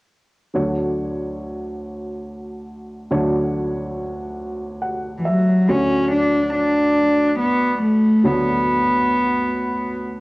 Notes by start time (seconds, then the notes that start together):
0.54 D2 D3 F#3 D4 C#5
3.11 D2 D3 F#3 D4 C#5
4.82 F#5
5.18 E3
5.25 F#3 E5
5.68 D2 D3 F#3 C#4 F#4 C#5
6.12 D4
6.55 D4
7.40 B3
7.83 A3
8.24 D2 D3 F#3 B3 D4 C#5